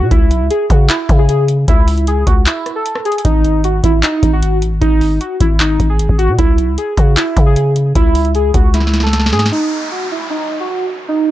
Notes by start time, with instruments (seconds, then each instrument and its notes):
0.01 808-style bass B2
0.11 808-style bass C#2, synth keys E4, kick, closed hi-hat
0.31 808-style bass B1, closed hi-hat
0.41 808-style bass C#2
0.50 synth keys G#4, closed hi-hat
0.70 808-style bass C#3, synth keys F#4, kick, closed hi-hat
0.89 synth keys E4, clap, closed hi-hat
1.09 808-style bass C#3, kick, closed hi-hat
1.19 synth keys G#4
1.29 synth keys G#4, closed hi-hat
1.48 closed hi-hat
1.68 808-style bass C#2, synth keys E4, kick, closed hi-hat
1.88 closed hi-hat, open hi-hat
1.98 closed hi-hat
2.07 synth keys G#4, closed hi-hat
2.26 808-style bass C#2, synth keys F#4, kick, closed hi-hat
2.46 synth keys E4, clap, closed hi-hat
2.66 cross-stick, closed hi-hat
2.76 synth keys A4
2.86 closed hi-hat
2.95 cross-stick
3.05 synth keys G#4, closed hi-hat
3.12 closed hi-hat
3.18 closed hi-hat
3.25 808-style bass G#1, synth keys D#4, kick, closed hi-hat
3.44 closed hi-hat
3.64 synth keys F#4, closed hi-hat
3.84 808-style bass G#1, synth keys E4, kick, closed hi-hat
4.03 synth keys D#4, clap, closed hi-hat
4.23 808-style bass G#1, kick, closed hi-hat
4.33 synth keys F#4
4.42 synth keys F#4, closed hi-hat
4.62 808-style bass A1, closed hi-hat
4.72 808-style bass G#1
4.81 808-style bass G#1, synth keys D#4, kick, closed hi-hat
5.01 open hi-hat
5.21 synth keys F#4, closed hi-hat
5.40 808-style bass G#1, synth keys E4, kick, closed hi-hat
5.60 synth keys D#4, clap, closed hi-hat
5.80 808-style bass G#1, kick, closed hi-hat
5.90 synth keys G#4
5.99 closed hi-hat
6.09 808-style bass G#1, kick
6.18 synth keys F#4, closed hi-hat
6.29 808-style bass B2
6.39 808-style bass C#2, synth keys E4, kick, closed hi-hat
6.58 808-style bass B1, closed hi-hat
6.68 808-style bass C#2
6.78 synth keys G#4, closed hi-hat
6.97 808-style bass C#3, synth keys F#4, kick, closed hi-hat
7.17 synth keys E4, clap, closed hi-hat
7.37 808-style bass C#3, kick, closed hi-hat
7.46 synth keys G#4
7.56 synth keys G#4, closed hi-hat
7.76 closed hi-hat
7.95 808-style bass C#2, synth keys E4, kick, closed hi-hat
8.15 closed hi-hat, open hi-hat
8.25 closed hi-hat
8.35 synth keys G#4, closed hi-hat
8.54 808-style bass C#2, synth keys F#4, kick, closed hi-hat
8.74 synth keys E4, snare, closed hi-hat
8.80 snare
8.87 snare
8.94 snare, closed hi-hat
9.00 synth keys A4, snare
9.07 snare
9.13 snare, closed hi-hat
9.20 snare
9.26 snare
9.33 808-style bass G#2, synth keys G#4, snare, closed hi-hat
9.39 snare, closed hi-hat
9.46 snare, closed hi-hat
9.52 synth keys D#4, downlifter
9.91 synth keys F#4
10.12 synth keys E4
10.30 synth keys D#4
10.60 synth keys F#4
10.70 synth keys F#4
11.08 synth keys D#4